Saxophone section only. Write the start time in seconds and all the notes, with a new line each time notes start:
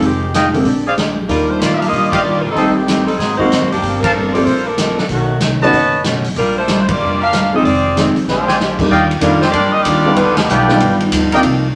0.05 D#3 G#3 C4 G4
1.29 G3 D4 F4 A#4
1.49 A3 D4 F4 C5
1.59 A#3 F4 G4 D5
1.74 G4 E5
1.78 D4 A#4 F5
1.87 A#3 F4 G4 D#5
2.08 A#3 F4 G4 D5
2.41 G3 D4 F4 A#4
2.51 G3 C4 D#4 A4
2.74 D#3 A3 C4 G4
3.05 G3 C4 D#4 A4
3.17 F#3 C4 D#4 G#4
3.38 A#3 D#4 F#4 C5
3.71 F3 A#3 D4 G4
4.01 F3 D4 A4 A#4
4.33 A#3 F4 A4 D5
4.44 A#3 F4 A4 C5
4.66 F3 D4 A4 A#4
4.99 F3 A#3 D4 A4
5.11 D#3 A3 C#4 F#4
6.37 G3 D4 F4 A#4
6.58 A3 D4 F4 C5
6.81 C5
6.89 A#3 F4 G4 D5
7.21 D4 G4 A#4 F5
7.54 C4 F4 A4 D#5
7.64 C4 F4 G#4 D5
8.28 G#3 D4 F4 C5
9.21 G3 D4 F4 A#4
9.41 G#3 D4 F4 C5
9.50 A#3 F4 G4 D5
9.71 A#3 F4 G4 D#5
9.82 A#3 F4 G4 D5
10.17 G3 D4 F4 B4
10.37 F3 B3 D4 G4